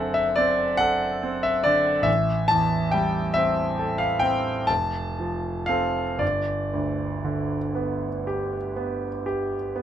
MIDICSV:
0, 0, Header, 1, 2, 480
1, 0, Start_track
1, 0, Tempo, 853485
1, 1168, Time_signature, 9, 3, 24, 8
1, 2127, Tempo, 906344
1, 2607, Tempo, 1000000
1, 3087, Tempo, 1039861
1, 4047, Tempo, 1000000
1, 5032, End_track
2, 0, Start_track
2, 0, Title_t, "Grand piano"
2, 0, Program_c, 0, 0
2, 0, Control_c, 0, 64, 127
2, 0, Note_on_c, 0, 30, 49
2, 0, Note_on_c, 0, 42, 43
2, 0, Note_on_c, 0, 50, 42
2, 0, Note_on_c, 0, 60, 50
2, 0, Note_on_c, 0, 69, 44
2, 0, Note_on_c, 0, 74, 69
2, 0, Note_on_c, 0, 76, 74
2, 0, Note_on_c, 0, 78, 79
2, 78, Note_off_c, 0, 78, 0
2, 79, Note_off_c, 0, 76, 0
2, 79, Note_on_c, 0, 76, 73
2, 110, Note_off_c, 0, 60, 0
2, 200, Note_off_c, 0, 74, 0
2, 200, Note_on_c, 0, 74, 76
2, 204, Note_off_c, 0, 76, 0
2, 214, Note_on_c, 0, 60, 47
2, 352, Note_off_c, 0, 69, 0
2, 435, Note_on_c, 0, 78, 87
2, 445, Note_off_c, 0, 74, 0
2, 451, Note_on_c, 0, 69, 53
2, 597, Note_off_c, 0, 60, 0
2, 692, Note_on_c, 0, 60, 46
2, 803, Note_off_c, 0, 78, 0
2, 804, Note_on_c, 0, 76, 71
2, 835, Note_off_c, 0, 69, 0
2, 920, Note_on_c, 0, 74, 77
2, 926, Note_off_c, 0, 76, 0
2, 932, Note_off_c, 0, 50, 0
2, 932, Note_on_c, 0, 50, 44
2, 1073, Note_off_c, 0, 60, 0
2, 1138, Note_on_c, 0, 33, 53
2, 1142, Note_on_c, 0, 76, 73
2, 1154, Note_off_c, 0, 30, 0
2, 1163, Note_off_c, 0, 74, 0
2, 1169, Note_off_c, 0, 50, 0
2, 1176, Control_c, 0, 64, 0
2, 1180, Note_off_c, 0, 42, 0
2, 1278, Control_c, 0, 64, 127
2, 1394, Note_on_c, 0, 81, 91
2, 1396, Note_off_c, 0, 76, 0
2, 1413, Note_on_c, 0, 40, 47
2, 1639, Note_on_c, 0, 79, 69
2, 1643, Note_off_c, 0, 81, 0
2, 1653, Note_on_c, 0, 55, 42
2, 1796, Note_off_c, 0, 40, 0
2, 1877, Note_on_c, 0, 76, 82
2, 1883, Note_off_c, 0, 79, 0
2, 1888, Note_on_c, 0, 60, 45
2, 2032, Note_off_c, 0, 55, 0
2, 2131, Note_on_c, 0, 69, 43
2, 2233, Note_on_c, 0, 77, 69
2, 2235, Note_off_c, 0, 76, 0
2, 2264, Note_off_c, 0, 60, 0
2, 2346, Note_on_c, 0, 79, 79
2, 2355, Note_off_c, 0, 77, 0
2, 2362, Note_on_c, 0, 60, 41
2, 2508, Note_off_c, 0, 69, 0
2, 2571, Note_off_c, 0, 33, 0
2, 2597, Note_on_c, 0, 81, 78
2, 2600, Note_off_c, 0, 79, 0
2, 2608, Note_off_c, 0, 60, 0
2, 2610, Note_on_c, 0, 29, 52
2, 2615, Control_c, 0, 64, 0
2, 2702, Control_c, 0, 64, 127
2, 2851, Note_on_c, 0, 53, 37
2, 3074, Note_on_c, 0, 77, 71
2, 3082, Note_off_c, 0, 81, 0
2, 3086, Note_on_c, 0, 60, 36
2, 3089, Note_on_c, 0, 69, 39
2, 3235, Note_off_c, 0, 53, 0
2, 3309, Note_off_c, 0, 60, 0
2, 3311, Note_off_c, 0, 29, 0
2, 3311, Note_off_c, 0, 69, 0
2, 3315, Note_on_c, 0, 31, 42
2, 3318, Note_on_c, 0, 74, 59
2, 3322, Note_off_c, 0, 77, 0
2, 3338, Control_c, 0, 64, 0
2, 3416, Control_c, 0, 64, 127
2, 3571, Note_on_c, 0, 38, 37
2, 3806, Note_on_c, 0, 50, 37
2, 3951, Note_off_c, 0, 38, 0
2, 4038, Note_on_c, 0, 59, 38
2, 4191, Note_off_c, 0, 50, 0
2, 4288, Note_on_c, 0, 67, 40
2, 4428, Note_off_c, 0, 59, 0
2, 4525, Note_on_c, 0, 59, 38
2, 4667, Note_off_c, 0, 67, 0
2, 4764, Note_on_c, 0, 67, 42
2, 4905, Note_off_c, 0, 59, 0
2, 5001, Note_on_c, 0, 59, 40
2, 5032, Note_off_c, 0, 31, 0
2, 5032, Note_off_c, 0, 59, 0
2, 5032, Note_off_c, 0, 67, 0
2, 5032, Note_off_c, 0, 74, 0
2, 5032, End_track
0, 0, End_of_file